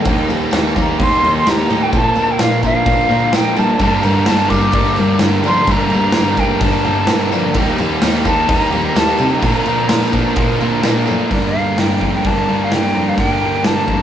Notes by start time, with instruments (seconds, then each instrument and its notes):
0.05 cello D#2, overdriven electric guitar D#3 G3 A#3 D#4 G4, kick, tambourine, crash
0.28 cello D#2, overdriven electric guitar D#4 G4, tambourine, crash
0.32 overdriven electric guitar A#3
0.51 cello D#2, distorted electric guitar D#3, overdriven electric guitar G3 A#3 D#4, snare, tambourine, crash
0.56 overdriven electric guitar G4
0.76 cello D#2, overdriven electric guitar A#3 D#4 G4, kick, tambourine, crash
0.81 flute A#5
1.00 cello D#2, overdriven electric guitar D#3 G3 A#3 D#4 G4, flute C6, kick, crash
1.23 cello D#2, overdriven electric guitar A#3 D#4 G4, crash
1.38 flute C6
1.45 cello D#2, distorted electric guitar D#3, overdriven electric guitar G3 A#3 D#4, snare, tambourine, crash
1.50 overdriven electric guitar G4, flute A#5
1.69 cello A2, overdriven electric guitar A#3 D#4 G4, tambourine, crash
1.83 flute G5
1.93 cello A#2, overdriven electric guitar A#2 D3 F3 A#3 D4 A#4, kick, tambourine, crash
1.97 flute A5
2.15 cello A#2, overdriven electric guitar F3 A#3 D4 A#4, tambourine, crash
2.32 flute G5
2.38 distorted electric guitar A#2, cello A#2, overdriven electric guitar F3 A#3, flute F5, snare, tambourine, crash
2.42 overdriven electric guitar D4 A#4
2.63 cello A#2, overdriven electric guitar F3 A#3 D4 A#4, flute F5, kick, tambourine, crash
2.85 overdriven electric guitar A#2 D3 F3 A#3 D4 A#4, cello A#2, kick, crash
3.09 cello A#2, overdriven electric guitar F3 A#3 D4 A#4, crash
3.31 distorted electric guitar A#2, cello A#2, overdriven electric guitar F3 A#3 D4 A#4, snare, tambourine, crash
3.36 flute G5
3.56 overdriven electric guitar F3 A#3 D4 A#4, cello G3, flute A5, tambourine, crash
3.79 overdriven electric guitar G2 D3 G3 A#3 D4 A#4, cello G2, kick, tambourine, crash
4.02 cello G2, distorted electric guitar D3, overdriven electric guitar G3 A#3 D4 A#4, flute A#5, tambourine, crash
4.25 distorted electric guitar G2 D3, cello G2, overdriven electric guitar G3 A#3 D4 A#4, flute A5, snare, tambourine, crash
4.50 cello G2, distorted electric guitar D3, overdriven electric guitar G3 A#3 D4 A#4, flute D6, kick, tambourine, crash
4.72 cello G2, overdriven electric guitar G2 D3 G3 A#3 D4, kick, crash
4.76 overdriven electric guitar A#4
4.95 cello G2, distorted electric guitar D3 G3, overdriven electric guitar A#3 D4 A#4, crash
4.99 overdriven electric guitar G3
5.19 distorted electric guitar G2 D3, cello G2, overdriven electric guitar G3 A#3, snare, tambourine, crash
5.23 overdriven electric guitar D4 A#4
5.43 distorted electric guitar D3 G3, cello F3, overdriven electric guitar A#3 D4 A#4, flute C6, tambourine, crash
5.47 overdriven electric guitar G3
5.67 cello G2, overdriven electric guitar G2 D3 G3 A#3 D4 A#4, kick, tambourine, crash
5.71 flute A#5
5.88 distorted electric guitar D3 G3, overdriven electric guitar A#4, crash
5.92 cello G2, overdriven electric guitar G3 A#3 D4, tambourine
6.12 distorted electric guitar G2 D3, overdriven electric guitar G3 A#3 D4, snare, tambourine, crash
6.17 cello G2, overdriven electric guitar A#4
6.36 cello G2, distorted electric guitar D3 G3, overdriven electric guitar A#3 D4 A#4, flute G5, kick, tambourine, crash
6.41 overdriven electric guitar G3
6.60 cello G2, overdriven electric guitar G2 D3 G3 A#3 D4 A#4, flute A5, kick, crash
6.85 cello G2, distorted electric guitar D3, overdriven electric guitar G3 A#3 D4 A#4, crash
7.07 distorted electric guitar G2 D3, cello G2, overdriven electric guitar G3 A#3 D4 A#4, snare, tambourine, crash
7.31 distorted electric guitar D3, cello F3, overdriven electric guitar G3 A#3 D4 A#4, tambourine, crash
7.54 cello D#2, overdriven electric guitar D#3 G3 A#3 D#4 G4, kick, tambourine, crash
7.77 cello D#2, overdriven electric guitar A#3 D#4 G4, tambourine, crash
8.01 cello D#2, distorted electric guitar D#3, overdriven electric guitar G3 A#3 D#4 G4, snare, tambourine, crash
8.25 cello D#2, overdriven electric guitar A#3 D#4 G4, flute A5, kick, tambourine, crash
8.47 cello D#2, overdriven electric guitar D#3 G3 A#3 D#4 G4, flute A#5, kick, crash
8.70 cello D#2, overdriven electric guitar A#3 D#4 G4, crash
8.87 flute A#5
8.94 cello D#2, distorted electric guitar D#3, overdriven electric guitar G3 A#3 D#4 G4, snare, tambourine, crash
8.98 flute A5
9.18 cello C3, overdriven electric guitar A#3 D#4 G4, tambourine, crash
9.23 flute A#5
9.41 overdriven electric guitar A#2 D3 F3 A#3 D4 A#4, cello A#2, kick, tambourine, crash
9.64 cello A#2, overdriven electric guitar F3 A#3 D4 A#4, tambourine, crash
9.89 distorted electric guitar A#2, cello A#2, overdriven electric guitar F3 A#3 D4 A#4, snare, tambourine, crash
10.12 cello A#2, overdriven electric guitar F3 A#3 D4 A#4, kick, tambourine, crash
10.36 overdriven electric guitar A#2 D3 F3 A#3 D4 A#4, cello A#2, kick, tambourine, crash
10.59 cello A#2, overdriven electric guitar F3 A#3 D4 A#4, tambourine, crash
10.81 distorted electric guitar A#2, cello A#2, overdriven electric guitar F3 A#3 D4 A#4, snare, tambourine, crash
11.06 cello F#2, overdriven electric guitar F3 A#3 D4 A#4, clean electric guitar A3, tambourine, crash
11.29 overdriven electric guitar G2 D3 G3 A#3 D4 A#4, cello G2, kick, open hi-hat
11.34 flute D5
11.46 flute F5
11.54 distorted electric guitar D3, overdriven electric guitar G3 A#3 D4 A#4
11.77 distorted electric guitar G2 D3, cello G2, overdriven electric guitar G3 A#3 D4 A#4, flute G5, snare, open hi-hat
12.01 cello F2, distorted electric guitar G2 D3 G3, kick
12.15 flute G5
12.25 cello G2, distorted electric guitar G2 D3 G3 A#3, clean electric guitar D4, flute A5, kick, open hi-hat
12.48 cello G2, distorted electric guitar D3, overdriven electric guitar G3 A#3 D4 A#4
12.64 flute F5
12.70 overdriven electric guitar G2 D3 G3 A#3 D4 A#4, cello G2, snare, open hi-hat
12.74 flute G5
12.94 cello F2, overdriven electric guitar G3 A#3 D4 A#4
12.98 distorted electric guitar D3
13.09 flute F5
13.17 overdriven electric guitar G2 D3 G3 A#3 D4 A#4, cello G2, flute G5, kick, open hi-hat
13.41 distorted electric guitar D3, overdriven electric guitar G3 A#3 D4 A#4
13.63 distorted electric guitar G2 D3, cello G2, overdriven electric guitar G3 A#3 D4 A#4, flute A5, snare, open hi-hat
13.87 cello F2, distorted electric guitar G2 D3 G3, kick